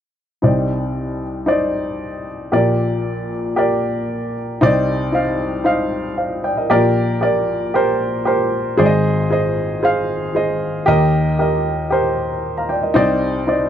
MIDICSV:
0, 0, Header, 1, 2, 480
1, 0, Start_track
1, 0, Key_signature, -3, "minor"
1, 0, Tempo, 522193
1, 403, Time_signature, 4, 2, 24, 8
1, 12587, End_track
2, 0, Start_track
2, 0, Title_t, "Grand piano"
2, 0, Program_c, 0, 0
2, 387, Note_on_c, 0, 63, 55
2, 392, Note_on_c, 0, 72, 50
2, 394, Note_on_c, 0, 36, 48
2, 398, Note_on_c, 0, 48, 46
2, 404, Note_on_c, 0, 74, 57
2, 589, Control_c, 0, 64, 127
2, 1114, Note_off_c, 0, 63, 0
2, 1116, Note_off_c, 0, 72, 0
2, 1122, Note_off_c, 0, 74, 0
2, 1344, Note_on_c, 0, 63, 67
2, 1354, Note_on_c, 0, 72, 59
2, 1364, Note_on_c, 0, 74, 72
2, 2072, Note_off_c, 0, 63, 0
2, 2077, Note_off_c, 0, 72, 0
2, 2082, Note_off_c, 0, 74, 0
2, 2282, Note_off_c, 0, 36, 0
2, 2284, Note_off_c, 0, 48, 0
2, 2315, Note_on_c, 0, 67, 60
2, 2319, Note_on_c, 0, 70, 52
2, 2321, Note_on_c, 0, 34, 52
2, 2323, Note_on_c, 0, 46, 55
2, 2329, Note_on_c, 0, 74, 73
2, 2334, Control_c, 0, 64, 0
2, 2494, Control_c, 0, 64, 127
2, 3037, Note_off_c, 0, 67, 0
2, 3039, Note_off_c, 0, 70, 0
2, 3044, Note_off_c, 0, 74, 0
2, 3274, Note_on_c, 0, 67, 69
2, 3281, Note_on_c, 0, 70, 60
2, 3296, Note_on_c, 0, 74, 75
2, 3997, Note_off_c, 0, 67, 0
2, 4000, Note_off_c, 0, 70, 0
2, 4007, Note_off_c, 0, 74, 0
2, 4204, Note_off_c, 0, 34, 0
2, 4206, Note_off_c, 0, 46, 0
2, 4238, Note_on_c, 0, 63, 81
2, 4244, Note_on_c, 0, 48, 54
2, 4245, Note_on_c, 0, 72, 77
2, 4247, Note_on_c, 0, 36, 58
2, 4252, Control_c, 0, 64, 0
2, 4257, Note_on_c, 0, 74, 94
2, 4418, Control_c, 0, 64, 127
2, 4599, Note_off_c, 0, 63, 0
2, 4603, Note_off_c, 0, 72, 0
2, 4609, Note_off_c, 0, 74, 0
2, 4710, Note_on_c, 0, 63, 66
2, 4721, Note_on_c, 0, 72, 59
2, 4731, Note_on_c, 0, 77, 71
2, 5075, Note_off_c, 0, 63, 0
2, 5081, Note_off_c, 0, 72, 0
2, 5086, Note_off_c, 0, 77, 0
2, 5187, Note_on_c, 0, 63, 71
2, 5191, Note_on_c, 0, 72, 64
2, 5201, Note_on_c, 0, 77, 80
2, 5553, Note_off_c, 0, 63, 0
2, 5555, Note_off_c, 0, 72, 0
2, 5560, Note_off_c, 0, 77, 0
2, 5676, Note_on_c, 0, 77, 51
2, 5679, Note_on_c, 0, 72, 41
2, 5906, Note_off_c, 0, 77, 0
2, 5908, Note_off_c, 0, 72, 0
2, 5920, Note_on_c, 0, 79, 55
2, 5922, Note_on_c, 0, 74, 43
2, 6034, Note_off_c, 0, 79, 0
2, 6035, Note_off_c, 0, 74, 0
2, 6043, Note_on_c, 0, 75, 48
2, 6049, Note_on_c, 0, 70, 39
2, 6125, Note_off_c, 0, 48, 0
2, 6126, Note_off_c, 0, 36, 0
2, 6149, Note_off_c, 0, 70, 0
2, 6156, Note_on_c, 0, 67, 84
2, 6160, Note_on_c, 0, 34, 61
2, 6163, Note_on_c, 0, 70, 81
2, 6164, Note_on_c, 0, 46, 52
2, 6167, Note_on_c, 0, 74, 91
2, 6172, Control_c, 0, 64, 0
2, 6269, Note_off_c, 0, 75, 0
2, 6347, Control_c, 0, 64, 127
2, 6517, Note_off_c, 0, 67, 0
2, 6521, Note_off_c, 0, 70, 0
2, 6523, Note_off_c, 0, 74, 0
2, 6627, Note_on_c, 0, 67, 62
2, 6633, Note_on_c, 0, 70, 59
2, 6643, Note_on_c, 0, 74, 77
2, 6992, Note_off_c, 0, 67, 0
2, 6996, Note_off_c, 0, 70, 0
2, 7001, Note_off_c, 0, 74, 0
2, 7115, Note_on_c, 0, 67, 69
2, 7126, Note_on_c, 0, 70, 68
2, 7130, Note_on_c, 0, 72, 79
2, 7477, Note_off_c, 0, 67, 0
2, 7482, Note_off_c, 0, 70, 0
2, 7484, Note_off_c, 0, 72, 0
2, 7586, Note_on_c, 0, 67, 65
2, 7598, Note_on_c, 0, 70, 63
2, 7604, Note_on_c, 0, 72, 75
2, 7952, Note_off_c, 0, 67, 0
2, 7958, Note_off_c, 0, 70, 0
2, 7961, Note_off_c, 0, 72, 0
2, 8042, Note_off_c, 0, 34, 0
2, 8044, Note_off_c, 0, 46, 0
2, 8066, Note_on_c, 0, 68, 82
2, 8074, Note_on_c, 0, 44, 57
2, 8076, Note_on_c, 0, 72, 85
2, 8078, Note_on_c, 0, 32, 57
2, 8083, Note_on_c, 0, 74, 73
2, 8092, Control_c, 0, 64, 0
2, 8139, Note_off_c, 0, 74, 0
2, 8143, Note_on_c, 0, 75, 90
2, 8256, Control_c, 0, 64, 127
2, 8432, Note_off_c, 0, 68, 0
2, 8437, Note_off_c, 0, 72, 0
2, 8470, Note_off_c, 0, 75, 0
2, 8553, Note_on_c, 0, 68, 63
2, 8564, Note_on_c, 0, 72, 62
2, 8572, Note_on_c, 0, 75, 79
2, 8915, Note_off_c, 0, 68, 0
2, 8921, Note_off_c, 0, 72, 0
2, 8925, Note_off_c, 0, 75, 0
2, 9033, Note_on_c, 0, 68, 69
2, 9040, Note_on_c, 0, 72, 65
2, 9052, Note_on_c, 0, 77, 83
2, 9395, Note_off_c, 0, 68, 0
2, 9399, Note_off_c, 0, 72, 0
2, 9405, Note_off_c, 0, 77, 0
2, 9512, Note_on_c, 0, 68, 59
2, 9520, Note_on_c, 0, 72, 58
2, 9524, Note_on_c, 0, 75, 75
2, 9874, Note_off_c, 0, 68, 0
2, 9879, Note_off_c, 0, 72, 0
2, 9881, Note_off_c, 0, 75, 0
2, 9959, Note_off_c, 0, 44, 0
2, 9961, Note_off_c, 0, 32, 0
2, 9981, Note_on_c, 0, 67, 83
2, 9993, Note_on_c, 0, 51, 53
2, 9995, Note_on_c, 0, 39, 64
2, 9997, Note_on_c, 0, 70, 79
2, 10001, Note_on_c, 0, 75, 94
2, 10011, Control_c, 0, 64, 0
2, 10194, Control_c, 0, 64, 127
2, 10349, Note_off_c, 0, 67, 0
2, 10357, Note_off_c, 0, 70, 0
2, 10359, Note_off_c, 0, 75, 0
2, 10469, Note_on_c, 0, 67, 66
2, 10475, Note_on_c, 0, 70, 60
2, 10488, Note_on_c, 0, 75, 70
2, 10833, Note_off_c, 0, 67, 0
2, 10836, Note_off_c, 0, 70, 0
2, 10842, Note_off_c, 0, 75, 0
2, 10942, Note_on_c, 0, 67, 67
2, 10958, Note_on_c, 0, 70, 61
2, 10960, Note_on_c, 0, 72, 75
2, 11309, Note_off_c, 0, 67, 0
2, 11318, Note_off_c, 0, 70, 0
2, 11318, Note_off_c, 0, 72, 0
2, 11558, Note_on_c, 0, 82, 49
2, 11563, Note_on_c, 0, 77, 43
2, 11665, Note_on_c, 0, 79, 53
2, 11671, Note_on_c, 0, 74, 45
2, 11672, Note_off_c, 0, 82, 0
2, 11675, Note_off_c, 0, 77, 0
2, 11785, Note_off_c, 0, 79, 0
2, 11788, Note_off_c, 0, 74, 0
2, 11793, Note_on_c, 0, 75, 47
2, 11798, Note_on_c, 0, 70, 40
2, 11878, Note_off_c, 0, 51, 0
2, 11879, Note_off_c, 0, 39, 0
2, 11894, Note_on_c, 0, 63, 92
2, 11903, Note_on_c, 0, 48, 56
2, 11904, Note_on_c, 0, 36, 59
2, 11905, Note_on_c, 0, 72, 84
2, 11914, Note_on_c, 0, 74, 94
2, 11927, Control_c, 0, 64, 0
2, 12023, Note_off_c, 0, 75, 0
2, 12026, Note_off_c, 0, 70, 0
2, 12100, Control_c, 0, 64, 127
2, 12265, Note_off_c, 0, 63, 0
2, 12270, Note_off_c, 0, 72, 0
2, 12275, Note_off_c, 0, 74, 0
2, 12384, Note_on_c, 0, 63, 66
2, 12389, Note_on_c, 0, 72, 60
2, 12398, Note_on_c, 0, 74, 71
2, 12587, Note_off_c, 0, 36, 0
2, 12587, Note_off_c, 0, 48, 0
2, 12587, Note_off_c, 0, 63, 0
2, 12587, Note_off_c, 0, 72, 0
2, 12587, Note_off_c, 0, 74, 0
2, 12587, End_track
0, 0, End_of_file